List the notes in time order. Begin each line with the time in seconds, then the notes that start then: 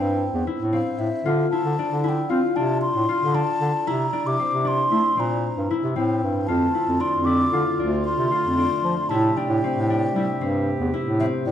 Already playing: G2 C4 D4 E4 G5
0.34 E2
0.47 E4
0.60 A2
0.73 C4 F5
0.99 A2 E5
1.25 D3 F4
1.50 E4 A5
1.65 D3
1.79 D4
1.91 D3
2.04 E4 A5
2.09 G5
2.29 C4 F4 F5
2.56 C3 D4 A5
2.82 C6
2.95 A2
3.09 F4
3.21 D3
3.34 D4 A5
3.61 D3
3.87 C3 E4 A#5
4.13 D4
4.27 C3 D6
4.39 C4
4.53 C3
4.65 D4 C6
4.92 A3 E4
5.17 A#2 C4 A#5
5.57 G2
5.71 E4
5.84 C3
5.96 A2 C4 G5
6.23 G2
6.46 F2 D3 A3 F4 A5
6.75 E4
6.88 F2
7.00 D4 C6
7.14 F2
7.25 E4 D6
7.53 D3 F4
7.79 D2 D4
8.04 C6
8.18 C3
8.31 F4
8.44 F2
8.58 D4
8.84 F3
9.09 A2 C3 E4 G4 A5
9.37 D4 G5
9.49 A2
9.64 C4
9.75 A2
9.90 D4
10.14 G3 E4
10.40 G2 C4
10.80 E2
10.94 E4
11.06 A2
11.20 C4 E5
11.46 A2 D5